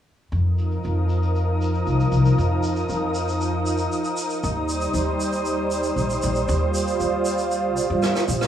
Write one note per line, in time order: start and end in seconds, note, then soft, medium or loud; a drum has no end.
0.30 0.77 F2 medium
0.30 4.39 F3 medium
0.30 6.45 D#4 medium
0.30 4.39 A#4 medium
0.30 8.47 D#6 medium
0.30 shaker medium
0.58 shaker medium
0.71 shaker soft
0.84 1.80 F2 medium
0.84 shaker soft
1.09 shaker medium
1.22 shaker soft
1.35 shaker soft
1.61 shaker medium
1.74 shaker soft
1.87 2.04 C2 medium
1.87 shaker soft
2.00 shaker soft
2.12 2.29 C2 medium
2.12 shaker medium
2.26 shaker soft
2.38 2.82 F2 medium
2.38 shaker soft
2.63 shaker medium
2.76 shaker soft
2.89 3.85 F2 medium
2.89 shaker soft
3.15 shaker medium
3.28 shaker soft
3.41 shaker medium
3.66 shaker medium
3.78 shaker soft
3.92 shaker medium
4.04 shaker soft
4.17 shaker medium
4.30 shaker soft
4.43 4.88 D#2 medium
4.43 8.47 G3 medium
4.43 8.47 C5 medium
4.43 shaker medium
4.69 shaker medium
4.81 shaker medium
4.94 5.90 D#2 medium
4.94 shaker medium
5.20 shaker medium
5.32 shaker soft
5.45 shaker medium
5.71 shaker medium
5.83 shaker soft
5.96 6.13 A#1 medium
5.96 shaker medium
6.10 shaker soft
6.22 6.40 A#1 medium
6.22 shaker medium
6.35 shaker soft
6.48 6.93 D#2 medium
6.48 8.47 F4 medium
6.48 shaker medium
6.75 shaker medium
6.87 shaker soft
7.00 7.77 D#2 medium
7.00 shaker medium
7.25 shaker medium
7.38 shaker soft
7.51 shaker medium
7.77 7.91 A#1 medium
7.77 shaker medium
7.90 7.98 G2 medium
8.02 cross-stick medium
8.02 shaker soft
8.15 cross-stick medium
8.15 shaker soft
8.28 8.45 A#1 medium
8.28 shaker medium
8.41 cross-stick medium
8.41 shaker soft